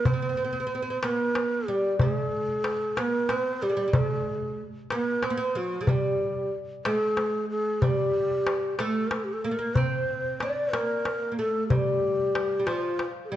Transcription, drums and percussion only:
0.05 darbuka dum
1.03 darbuka tek
1.35 darbuka tek
1.68 darbuka ka
1.84 darbuka ka
1.99 darbuka dum
2.64 darbuka tek
2.97 darbuka tek
3.29 darbuka tek
3.93 darbuka dum
4.90 darbuka tek
5.23 darbuka tek
5.87 darbuka dum
6.85 darbuka tek
7.17 darbuka tek
7.82 darbuka dum
8.47 darbuka tek
8.79 darbuka tek
9.11 darbuka tek
9.44 darbuka ka
9.60 darbuka ka
9.75 darbuka dum
10.40 darbuka tek
10.73 darbuka tek
11.05 darbuka tek
11.70 darbuka dum
12.35 darbuka tek
12.67 darbuka tek
12.99 darbuka tek

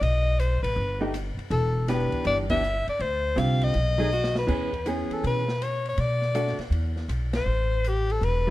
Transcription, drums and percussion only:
0.03 ride
0.39 hi-hat pedal, ride
0.64 ride
1.14 cross-stick, hi-hat pedal, ride
1.39 ride
1.51 ride
1.88 snare, hi-hat pedal, ride
2.12 kick, ride
2.25 ride
2.50 kick, crash
2.63 hi-hat pedal
2.88 ride
3.00 ride
3.38 hi-hat pedal, ride
3.61 ride
3.74 ride
4.12 hi-hat pedal
4.24 snare
4.35 snare
4.48 kick, crash
4.73 kick, ride
4.86 hi-hat pedal, ride
5.11 ride
5.24 ride
5.48 snare
5.62 cross-stick, hi-hat pedal, ride
5.85 ride
5.97 ride
6.22 snare
6.35 hi-hat pedal, ride
6.47 snare
6.59 snare, ride
6.72 ride
6.96 snare
7.09 cross-stick, hi-hat pedal, ride
7.33 snare, ride
7.84 hi-hat pedal, ride
8.10 ride
8.23 ride

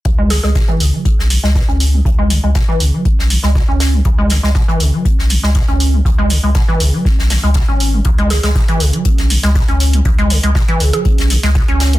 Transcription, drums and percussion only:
0.05 kick, closed hi-hat
0.30 snare, closed hi-hat, open hi-hat
0.43 snare
0.55 kick, snare, closed hi-hat
0.67 closed hi-hat
0.80 closed hi-hat, open hi-hat
1.05 kick, closed hi-hat
1.19 snare
1.30 closed hi-hat, open hi-hat
1.44 snare
1.55 kick, snare, closed hi-hat
1.69 closed hi-hat
1.80 closed hi-hat, open hi-hat
2.05 kick, closed hi-hat
2.30 closed hi-hat, open hi-hat
2.55 kick, snare, closed hi-hat
2.80 closed hi-hat, open hi-hat
3.05 kick, closed hi-hat
3.19 snare
3.30 closed hi-hat, open hi-hat
3.43 snare
3.55 kick, snare, closed hi-hat
3.80 snare, closed hi-hat, open hi-hat
4.05 kick, closed hi-hat
4.30 snare, closed hi-hat, open hi-hat
4.44 snare
4.55 kick, snare, closed hi-hat
4.69 closed hi-hat
4.80 closed hi-hat, open hi-hat
5.05 kick, closed hi-hat
5.19 snare
5.30 closed hi-hat, open hi-hat
5.43 snare
5.55 kick, snare, closed hi-hat
5.68 closed hi-hat
5.80 closed hi-hat, open hi-hat
6.05 kick, closed hi-hat
6.30 closed hi-hat, open hi-hat
6.55 kick, snare, closed hi-hat
6.80 closed hi-hat, open hi-hat
7.05 kick, snare, closed hi-hat
7.19 snare
7.30 snare, closed hi-hat, open hi-hat
7.44 closed hi-hat
7.54 kick, snare, closed hi-hat
7.80 closed hi-hat, open hi-hat
8.05 kick, closed hi-hat
8.18 closed hi-hat
8.30 snare, closed hi-hat, open hi-hat
8.43 snare, closed hi-hat
8.55 kick, snare, closed hi-hat
8.68 closed hi-hat
8.80 closed hi-hat, open hi-hat
8.93 closed hi-hat
9.05 kick, closed hi-hat
9.18 snare, closed hi-hat
9.30 closed hi-hat, open hi-hat
9.43 snare, closed hi-hat
9.55 kick, snare, closed hi-hat
9.68 closed hi-hat
9.80 closed hi-hat, open hi-hat
9.93 closed hi-hat
10.05 kick, closed hi-hat
10.18 closed hi-hat
10.30 closed hi-hat, open hi-hat
10.43 closed hi-hat
10.55 kick, snare, closed hi-hat
10.68 closed hi-hat
10.80 closed hi-hat, open hi-hat
10.93 closed hi-hat
11.05 kick, closed hi-hat
11.18 snare, closed hi-hat
11.30 closed hi-hat, open hi-hat
11.43 snare, closed hi-hat
11.55 kick, snare, closed hi-hat
11.68 closed hi-hat
11.80 snare, closed hi-hat, open hi-hat
11.93 closed hi-hat

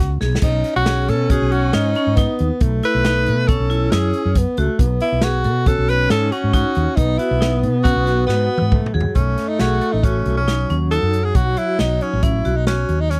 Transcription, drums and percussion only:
0.21 snare
0.35 snare
0.42 kick, closed hi-hat, crash
0.64 snare, closed hi-hat
0.86 snare, closed hi-hat
1.08 snare, closed hi-hat
1.30 kick, closed hi-hat
1.52 closed hi-hat
1.73 snare, closed hi-hat
1.95 closed hi-hat
2.17 kick, snare, closed hi-hat
2.39 closed hi-hat
2.61 kick, closed hi-hat
2.83 snare, closed hi-hat
3.05 snare, closed hi-hat
3.26 closed hi-hat
3.48 kick, closed hi-hat
3.71 closed hi-hat
3.92 snare, closed hi-hat
4.13 closed hi-hat
4.35 kick, closed hi-hat
4.57 closed hi-hat
4.79 kick, closed hi-hat
5.00 closed hi-hat
5.21 snare, closed hi-hat
5.44 closed hi-hat
5.66 kick, closed hi-hat
5.89 snare, closed hi-hat
6.10 snare, closed hi-hat
6.32 closed hi-hat
6.53 kick, closed hi-hat
6.75 closed hi-hat
6.97 kick, closed hi-hat
7.19 closed hi-hat
7.42 snare, closed hi-hat
7.63 closed hi-hat
7.85 kick, closed hi-hat
8.07 snare, closed hi-hat
8.29 snare
8.58 high tom
8.72 kick, mid tom
8.86 mid tom
9.00 floor tom
9.15 kick, closed hi-hat
9.38 snare, closed hi-hat
9.59 snare, closed hi-hat
9.81 closed hi-hat
10.03 kick, closed hi-hat
10.25 closed hi-hat
10.48 snare, closed hi-hat
10.70 closed hi-hat
10.91 closed hi-hat
11.13 closed hi-hat
11.35 kick, closed hi-hat
11.57 closed hi-hat
11.79 snare, closed hi-hat
12.01 closed hi-hat
12.23 kick, closed hi-hat
12.45 closed hi-hat
12.67 snare, closed hi-hat
12.89 closed hi-hat
13.11 snare, closed hi-hat

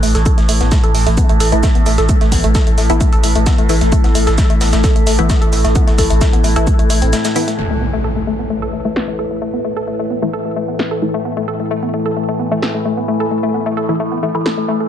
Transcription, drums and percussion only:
0.03 snare, open hi-hat, shaker
0.15 snare, closed hi-hat
0.26 kick, closed hi-hat, shaker
0.38 snare, closed hi-hat
0.49 open hi-hat, shaker
0.61 snare, closed hi-hat
0.72 kick, snare, closed hi-hat, shaker
0.84 closed hi-hat
0.95 open hi-hat
1.06 snare, closed hi-hat
1.17 kick, closed hi-hat, shaker
1.29 closed hi-hat
1.40 snare, open hi-hat, shaker
1.52 closed hi-hat
1.63 kick, snare, closed hi-hat, shaker
1.75 closed hi-hat
1.86 snare, open hi-hat, shaker
1.98 snare, closed hi-hat
2.09 kick, closed hi-hat, shaker
2.21 snare, closed hi-hat
2.32 kick, snare, open hi-hat, shaker
2.44 closed hi-hat
2.55 kick, snare, closed hi-hat, shaker
2.67 closed hi-hat
2.78 snare, open hi-hat, shaker
2.90 closed hi-hat
3.01 kick, closed hi-hat, shaker
3.13 closed hi-hat
3.24 open hi-hat, shaker
3.35 closed hi-hat
3.46 kick, snare, closed hi-hat, shaker
3.58 closed hi-hat
3.69 snare, open hi-hat, shaker
3.81 snare, closed hi-hat
3.92 kick, closed hi-hat, shaker
4.04 snare, closed hi-hat
4.15 open hi-hat, shaker
4.27 snare, closed hi-hat
4.38 kick, snare, closed hi-hat, shaker
4.50 closed hi-hat
4.61 snare, open hi-hat, shaker
4.73 snare, closed hi-hat, shaker
4.84 kick, snare, closed hi-hat, shaker
4.96 closed hi-hat
5.07 snare, open hi-hat, shaker
5.19 closed hi-hat
5.30 kick, snare, closed hi-hat, shaker
5.42 closed hi-hat
5.53 snare, open hi-hat, shaker
5.64 snare, closed hi-hat
5.75 kick, closed hi-hat, shaker
5.87 snare, closed hi-hat
5.98 kick, snare, open hi-hat, shaker
6.10 closed hi-hat
6.21 kick, snare, closed hi-hat, shaker
6.33 closed hi-hat
6.44 snare, open hi-hat, shaker
6.56 closed hi-hat
6.67 kick, closed hi-hat, shaker
6.79 closed hi-hat
6.90 open hi-hat, shaker
7.02 closed hi-hat
7.13 snare, closed hi-hat, shaker
7.25 snare, closed hi-hat, shaker
7.36 snare, open hi-hat, shaker
7.48 snare, closed hi-hat
8.96 snare
10.79 snare
12.62 snare
14.46 snare

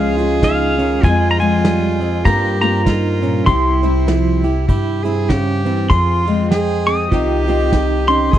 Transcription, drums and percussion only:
0.18 ride
0.43 kick, snare, ride
0.79 ride
1.03 kick, ride
1.39 ride
1.65 snare, ride
2.01 ride
2.26 kick, ride
2.62 ride
2.86 kick, snare, ride
3.23 ride
3.47 kick, ride
3.83 ride
4.08 snare, ride
4.44 ride
4.69 kick, ride
5.05 ride
5.30 kick, snare, ride
5.66 ride
5.90 kick, ride
6.27 ride
6.51 snare, ride
6.88 ride
7.12 kick, ride
7.48 ride
7.72 kick, snare, ride
8.09 ride
8.33 kick, ride

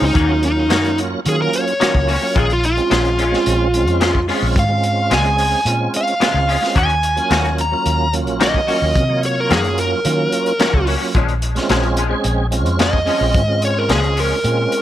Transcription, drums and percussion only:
0.15 kick, closed hi-hat
0.43 closed hi-hat
0.70 snare, closed hi-hat
0.85 closed hi-hat
0.98 closed hi-hat
1.26 closed hi-hat
1.53 closed hi-hat
1.68 closed hi-hat
1.81 snare, closed hi-hat
1.95 kick
2.08 open hi-hat
2.36 kick, closed hi-hat
2.50 closed hi-hat
2.64 closed hi-hat
2.77 closed hi-hat
2.91 snare, closed hi-hat
3.05 closed hi-hat
3.19 closed hi-hat
3.34 snare
3.46 closed hi-hat
3.74 closed hi-hat
3.87 closed hi-hat
4.01 snare, closed hi-hat
4.15 kick
4.29 open hi-hat
4.56 kick, closed hi-hat
4.84 closed hi-hat
5.11 snare, closed hi-hat
5.25 closed hi-hat
5.38 open hi-hat
5.66 closed hi-hat
5.94 closed hi-hat
6.07 closed hi-hat
6.21 snare, closed hi-hat
6.49 open hi-hat
6.64 snare
6.76 kick, closed hi-hat
6.89 closed hi-hat
7.03 closed hi-hat
7.17 closed hi-hat
7.31 snare, closed hi-hat
7.45 closed hi-hat
7.58 closed hi-hat
7.86 closed hi-hat
8.13 closed hi-hat
8.27 closed hi-hat
8.41 snare, closed hi-hat
8.54 kick
8.68 open hi-hat
8.95 kick, closed hi-hat
9.23 closed hi-hat
9.51 snare, closed hi-hat
9.64 closed hi-hat
9.78 closed hi-hat
10.05 closed hi-hat
10.32 closed hi-hat
10.46 closed hi-hat
10.60 snare, closed hi-hat
10.74 kick
10.87 open hi-hat
11.15 kick, closed hi-hat
11.29 closed hi-hat
11.42 closed hi-hat
11.56 snare, closed hi-hat
11.69 snare, closed hi-hat
11.83 closed hi-hat
11.97 closed hi-hat
12.24 closed hi-hat
12.52 closed hi-hat
12.66 closed hi-hat
12.79 snare, closed hi-hat
12.93 kick
13.07 open hi-hat
13.34 kick, closed hi-hat
13.62 closed hi-hat
13.89 snare, closed hi-hat
14.03 closed hi-hat
14.17 open hi-hat
14.45 closed hi-hat
14.72 closed hi-hat

